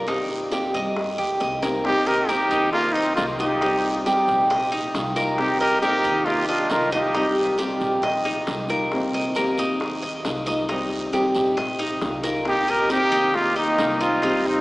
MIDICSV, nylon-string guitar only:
0, 0, Header, 1, 3, 480
1, 0, Start_track
1, 0, Key_signature, -3, "minor"
1, 0, Tempo, 442152
1, 85, Time_signature, 4, 2, 24, 8
1, 15858, End_track
2, 0, Start_track
2, 0, Title_t, "Nylon-string guitar"
2, 0, Program_c, 0, 24
2, 70, Note_on_c, 0, 48, 66
2, 77, Note_on_c, 0, 51, 75
2, 83, Note_on_c, 0, 58, 73
2, 89, Note_on_c, 0, 60, 74
2, 97, Note_on_c, 0, 67, 81
2, 542, Note_off_c, 0, 48, 0
2, 549, Note_off_c, 0, 51, 0
2, 555, Note_off_c, 0, 58, 0
2, 555, Note_on_c, 0, 48, 66
2, 558, Note_off_c, 0, 60, 0
2, 562, Note_off_c, 0, 67, 0
2, 562, Note_on_c, 0, 51, 66
2, 567, Note_on_c, 0, 58, 66
2, 574, Note_on_c, 0, 60, 69
2, 576, Note_on_c, 0, 67, 77
2, 1027, Note_off_c, 0, 48, 0
2, 1033, Note_off_c, 0, 58, 0
2, 1035, Note_off_c, 0, 51, 0
2, 1041, Note_off_c, 0, 60, 0
2, 1042, Note_off_c, 0, 67, 0
2, 1518, Note_on_c, 0, 51, 50
2, 1523, Note_on_c, 0, 58, 51
2, 1534, Note_on_c, 0, 60, 54
2, 1540, Note_on_c, 0, 67, 57
2, 1750, Note_off_c, 0, 67, 0
2, 1753, Note_off_c, 0, 51, 0
2, 1755, Note_off_c, 0, 58, 0
2, 1756, Note_off_c, 0, 60, 0
2, 1763, Note_on_c, 0, 67, 64
2, 1769, Note_on_c, 0, 60, 61
2, 1775, Note_on_c, 0, 58, 51
2, 1786, Note_on_c, 0, 51, 55
2, 1991, Note_off_c, 0, 51, 0
2, 1995, Note_off_c, 0, 67, 0
2, 1998, Note_off_c, 0, 58, 0
2, 1998, Note_off_c, 0, 60, 0
2, 1999, Note_on_c, 0, 48, 70
2, 2004, Note_on_c, 0, 51, 68
2, 2011, Note_on_c, 0, 58, 73
2, 2016, Note_on_c, 0, 60, 73
2, 2021, Note_on_c, 0, 67, 76
2, 2473, Note_off_c, 0, 48, 0
2, 2473, Note_off_c, 0, 51, 0
2, 2479, Note_off_c, 0, 58, 0
2, 2482, Note_off_c, 0, 60, 0
2, 2485, Note_off_c, 0, 67, 0
2, 2485, Note_on_c, 0, 48, 68
2, 2486, Note_on_c, 0, 51, 74
2, 2493, Note_on_c, 0, 58, 66
2, 2499, Note_on_c, 0, 60, 71
2, 2504, Note_on_c, 0, 67, 77
2, 2951, Note_off_c, 0, 51, 0
2, 2953, Note_off_c, 0, 58, 0
2, 2956, Note_off_c, 0, 48, 0
2, 2963, Note_off_c, 0, 60, 0
2, 2966, Note_off_c, 0, 67, 0
2, 3440, Note_on_c, 0, 58, 52
2, 3451, Note_on_c, 0, 63, 54
2, 3458, Note_on_c, 0, 65, 53
2, 3467, Note_on_c, 0, 70, 56
2, 3668, Note_off_c, 0, 70, 0
2, 3674, Note_off_c, 0, 58, 0
2, 3679, Note_off_c, 0, 63, 0
2, 3680, Note_off_c, 0, 65, 0
2, 3681, Note_on_c, 0, 70, 73
2, 3693, Note_on_c, 0, 65, 59
2, 3698, Note_on_c, 0, 63, 52
2, 3704, Note_on_c, 0, 58, 52
2, 3914, Note_off_c, 0, 70, 0
2, 3920, Note_off_c, 0, 65, 0
2, 3922, Note_off_c, 0, 63, 0
2, 3925, Note_off_c, 0, 58, 0
2, 3925, Note_on_c, 0, 48, 68
2, 3931, Note_on_c, 0, 51, 75
2, 3940, Note_on_c, 0, 55, 73
2, 3944, Note_on_c, 0, 60, 73
2, 3946, Note_on_c, 0, 67, 81
2, 4391, Note_off_c, 0, 48, 0
2, 4395, Note_off_c, 0, 51, 0
2, 4398, Note_off_c, 0, 55, 0
2, 4404, Note_on_c, 0, 48, 68
2, 4405, Note_off_c, 0, 60, 0
2, 4406, Note_off_c, 0, 67, 0
2, 4408, Note_on_c, 0, 51, 75
2, 4411, Note_on_c, 0, 55, 78
2, 4419, Note_on_c, 0, 60, 81
2, 4424, Note_on_c, 0, 67, 84
2, 4872, Note_off_c, 0, 51, 0
2, 4875, Note_off_c, 0, 48, 0
2, 4878, Note_off_c, 0, 55, 0
2, 4882, Note_off_c, 0, 60, 0
2, 4885, Note_off_c, 0, 67, 0
2, 5360, Note_on_c, 0, 51, 53
2, 5366, Note_on_c, 0, 58, 58
2, 5373, Note_on_c, 0, 63, 57
2, 5379, Note_on_c, 0, 65, 61
2, 5587, Note_off_c, 0, 65, 0
2, 5593, Note_off_c, 0, 51, 0
2, 5595, Note_off_c, 0, 58, 0
2, 5599, Note_off_c, 0, 63, 0
2, 5600, Note_on_c, 0, 65, 72
2, 5611, Note_on_c, 0, 63, 61
2, 5620, Note_on_c, 0, 58, 59
2, 5832, Note_off_c, 0, 65, 0
2, 5838, Note_off_c, 0, 63, 0
2, 5842, Note_off_c, 0, 58, 0
2, 5842, Note_on_c, 0, 48, 76
2, 5852, Note_on_c, 0, 51, 73
2, 5855, Note_on_c, 0, 58, 78
2, 5859, Note_on_c, 0, 60, 82
2, 5866, Note_on_c, 0, 67, 81
2, 6297, Note_off_c, 0, 48, 0
2, 6310, Note_off_c, 0, 51, 0
2, 6310, Note_on_c, 0, 48, 68
2, 6314, Note_off_c, 0, 58, 0
2, 6321, Note_off_c, 0, 67, 0
2, 6322, Note_off_c, 0, 60, 0
2, 6323, Note_on_c, 0, 51, 65
2, 6327, Note_on_c, 0, 58, 73
2, 6333, Note_on_c, 0, 60, 79
2, 6334, Note_on_c, 0, 67, 78
2, 6786, Note_off_c, 0, 51, 0
2, 6787, Note_off_c, 0, 48, 0
2, 6789, Note_off_c, 0, 58, 0
2, 6798, Note_off_c, 0, 60, 0
2, 6799, Note_off_c, 0, 67, 0
2, 7272, Note_on_c, 0, 58, 54
2, 7284, Note_on_c, 0, 63, 57
2, 7292, Note_on_c, 0, 65, 59
2, 7297, Note_on_c, 0, 70, 56
2, 7503, Note_off_c, 0, 70, 0
2, 7508, Note_off_c, 0, 58, 0
2, 7509, Note_off_c, 0, 65, 0
2, 7513, Note_off_c, 0, 63, 0
2, 7516, Note_on_c, 0, 70, 68
2, 7522, Note_on_c, 0, 65, 59
2, 7530, Note_on_c, 0, 63, 58
2, 7539, Note_on_c, 0, 58, 53
2, 7749, Note_off_c, 0, 70, 0
2, 7753, Note_off_c, 0, 65, 0
2, 7757, Note_off_c, 0, 63, 0
2, 7757, Note_on_c, 0, 48, 73
2, 7760, Note_off_c, 0, 58, 0
2, 7764, Note_on_c, 0, 51, 69
2, 7773, Note_on_c, 0, 55, 80
2, 7779, Note_on_c, 0, 60, 83
2, 7779, Note_on_c, 0, 67, 73
2, 8221, Note_off_c, 0, 48, 0
2, 8228, Note_off_c, 0, 51, 0
2, 8232, Note_off_c, 0, 55, 0
2, 8234, Note_on_c, 0, 48, 69
2, 8238, Note_off_c, 0, 60, 0
2, 8241, Note_off_c, 0, 67, 0
2, 8241, Note_on_c, 0, 51, 68
2, 8245, Note_on_c, 0, 55, 76
2, 8251, Note_on_c, 0, 60, 78
2, 8258, Note_on_c, 0, 67, 78
2, 8705, Note_off_c, 0, 51, 0
2, 8708, Note_off_c, 0, 48, 0
2, 8714, Note_off_c, 0, 55, 0
2, 8717, Note_off_c, 0, 60, 0
2, 8720, Note_off_c, 0, 67, 0
2, 9197, Note_on_c, 0, 51, 54
2, 9209, Note_on_c, 0, 58, 53
2, 9215, Note_on_c, 0, 63, 59
2, 9223, Note_on_c, 0, 65, 57
2, 9429, Note_off_c, 0, 65, 0
2, 9430, Note_off_c, 0, 51, 0
2, 9436, Note_off_c, 0, 58, 0
2, 9439, Note_off_c, 0, 63, 0
2, 9442, Note_on_c, 0, 65, 67
2, 9459, Note_on_c, 0, 63, 57
2, 9467, Note_on_c, 0, 58, 51
2, 9673, Note_off_c, 0, 65, 0
2, 9681, Note_off_c, 0, 63, 0
2, 9685, Note_off_c, 0, 58, 0
2, 9688, Note_on_c, 0, 48, 70
2, 9690, Note_on_c, 0, 51, 75
2, 9696, Note_on_c, 0, 58, 77
2, 9705, Note_on_c, 0, 60, 78
2, 9710, Note_on_c, 0, 67, 77
2, 10156, Note_off_c, 0, 48, 0
2, 10157, Note_off_c, 0, 51, 0
2, 10160, Note_off_c, 0, 58, 0
2, 10164, Note_off_c, 0, 60, 0
2, 10166, Note_off_c, 0, 67, 0
2, 10172, Note_on_c, 0, 48, 70
2, 10176, Note_on_c, 0, 51, 63
2, 10182, Note_on_c, 0, 58, 77
2, 10189, Note_on_c, 0, 60, 72
2, 10194, Note_on_c, 0, 67, 77
2, 10635, Note_off_c, 0, 51, 0
2, 10638, Note_off_c, 0, 48, 0
2, 10642, Note_off_c, 0, 58, 0
2, 10646, Note_off_c, 0, 60, 0
2, 10649, Note_off_c, 0, 67, 0
2, 11120, Note_on_c, 0, 58, 54
2, 11128, Note_on_c, 0, 63, 54
2, 11140, Note_on_c, 0, 65, 61
2, 11146, Note_on_c, 0, 70, 61
2, 11352, Note_off_c, 0, 58, 0
2, 11353, Note_off_c, 0, 70, 0
2, 11356, Note_off_c, 0, 63, 0
2, 11362, Note_off_c, 0, 65, 0
2, 11366, Note_on_c, 0, 70, 65
2, 11373, Note_on_c, 0, 65, 56
2, 11383, Note_on_c, 0, 63, 57
2, 11388, Note_on_c, 0, 58, 51
2, 11595, Note_off_c, 0, 70, 0
2, 11598, Note_off_c, 0, 65, 0
2, 11604, Note_off_c, 0, 63, 0
2, 11606, Note_off_c, 0, 58, 0
2, 11610, Note_on_c, 0, 48, 72
2, 11616, Note_on_c, 0, 51, 65
2, 11620, Note_on_c, 0, 55, 75
2, 11629, Note_on_c, 0, 60, 71
2, 11633, Note_on_c, 0, 67, 81
2, 12068, Note_off_c, 0, 48, 0
2, 12077, Note_off_c, 0, 51, 0
2, 12081, Note_on_c, 0, 48, 72
2, 12082, Note_off_c, 0, 55, 0
2, 12087, Note_off_c, 0, 60, 0
2, 12089, Note_off_c, 0, 67, 0
2, 12090, Note_on_c, 0, 51, 74
2, 12097, Note_on_c, 0, 55, 72
2, 12102, Note_on_c, 0, 60, 74
2, 12110, Note_on_c, 0, 67, 78
2, 12553, Note_off_c, 0, 48, 0
2, 12557, Note_off_c, 0, 51, 0
2, 12561, Note_off_c, 0, 55, 0
2, 12564, Note_off_c, 0, 60, 0
2, 12568, Note_off_c, 0, 67, 0
2, 13050, Note_on_c, 0, 51, 55
2, 13060, Note_on_c, 0, 58, 54
2, 13068, Note_on_c, 0, 63, 59
2, 13072, Note_on_c, 0, 65, 63
2, 13272, Note_off_c, 0, 65, 0
2, 13278, Note_off_c, 0, 51, 0
2, 13283, Note_off_c, 0, 58, 0
2, 13285, Note_on_c, 0, 65, 65
2, 13287, Note_off_c, 0, 63, 0
2, 13303, Note_on_c, 0, 63, 56
2, 13310, Note_on_c, 0, 58, 52
2, 13515, Note_off_c, 0, 65, 0
2, 13522, Note_on_c, 0, 48, 73
2, 13524, Note_off_c, 0, 63, 0
2, 13528, Note_off_c, 0, 58, 0
2, 13531, Note_on_c, 0, 51, 79
2, 13540, Note_on_c, 0, 58, 74
2, 13544, Note_on_c, 0, 60, 75
2, 13548, Note_on_c, 0, 67, 83
2, 13994, Note_off_c, 0, 48, 0
2, 13999, Note_off_c, 0, 51, 0
2, 14003, Note_off_c, 0, 58, 0
2, 14005, Note_off_c, 0, 60, 0
2, 14007, Note_off_c, 0, 67, 0
2, 14009, Note_on_c, 0, 48, 67
2, 14014, Note_on_c, 0, 51, 76
2, 14017, Note_on_c, 0, 58, 69
2, 14026, Note_on_c, 0, 60, 77
2, 14029, Note_on_c, 0, 67, 72
2, 14474, Note_off_c, 0, 51, 0
2, 14478, Note_off_c, 0, 48, 0
2, 14478, Note_off_c, 0, 58, 0
2, 14486, Note_off_c, 0, 60, 0
2, 14488, Note_off_c, 0, 67, 0
2, 14963, Note_on_c, 0, 58, 53
2, 14974, Note_on_c, 0, 63, 54
2, 14979, Note_on_c, 0, 65, 59
2, 14989, Note_on_c, 0, 70, 58
2, 15187, Note_off_c, 0, 70, 0
2, 15195, Note_off_c, 0, 58, 0
2, 15199, Note_off_c, 0, 65, 0
2, 15200, Note_on_c, 0, 70, 67
2, 15201, Note_off_c, 0, 63, 0
2, 15212, Note_on_c, 0, 65, 60
2, 15222, Note_on_c, 0, 63, 59
2, 15226, Note_on_c, 0, 58, 51
2, 15434, Note_off_c, 0, 70, 0
2, 15440, Note_off_c, 0, 65, 0
2, 15441, Note_on_c, 0, 48, 76
2, 15444, Note_off_c, 0, 63, 0
2, 15445, Note_off_c, 0, 58, 0
2, 15449, Note_on_c, 0, 51, 72
2, 15454, Note_on_c, 0, 55, 68
2, 15460, Note_on_c, 0, 60, 82
2, 15463, Note_on_c, 0, 67, 77
2, 15858, Note_off_c, 0, 48, 0
2, 15858, Note_off_c, 0, 51, 0
2, 15858, Note_off_c, 0, 55, 0
2, 15858, Note_off_c, 0, 60, 0
2, 15858, Note_off_c, 0, 67, 0
2, 15858, End_track
3, 0, Start_track
3, 0, Title_t, "Muted nylon-string guitar strokes"
3, 1040, Note_on_c, 9, 29, 60
3, 1149, Note_off_c, 9, 29, 0
3, 2964, Note_on_c, 9, 29, 59
3, 3073, Note_off_c, 9, 29, 0
3, 4885, Note_on_c, 9, 29, 67
3, 4993, Note_off_c, 9, 29, 0
3, 6799, Note_on_c, 9, 29, 63
3, 6908, Note_off_c, 9, 29, 0
3, 8718, Note_on_c, 9, 29, 65
3, 8826, Note_off_c, 9, 29, 0
3, 10648, Note_on_c, 9, 29, 63
3, 10757, Note_off_c, 9, 29, 0
3, 12575, Note_on_c, 9, 29, 65
3, 12683, Note_off_c, 9, 29, 0
3, 14487, Note_on_c, 9, 29, 68
3, 14596, Note_off_c, 9, 29, 0
3, 15858, End_track
0, 0, End_of_file